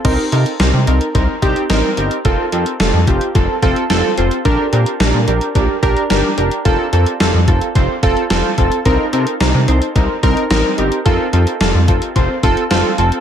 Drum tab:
CC |x---------------|----------------|----------------|----------------|
HH |x-xxx-xxx-xxx-xx|x-xxx-xxx-xxx-xx|x-xxx-xxx-xxx-xx|x-xxx-xxx-xxx-xx|
SD |----o-------o---|----o-------o---|----o-------o---|----o-------o---|
BD |o-------o-o-----|o-----o-o-o-----|o-------o-o-----|o-----o-o-o---o-|

CC |----------------|----------------|
HH |x-xxx-xxx-xxx-xx|x-xxx-xxx-xxx-xx|
SD |----o-------o---|----o-------o---|
BD |o-------o-o-----|o-----o-o-o-----|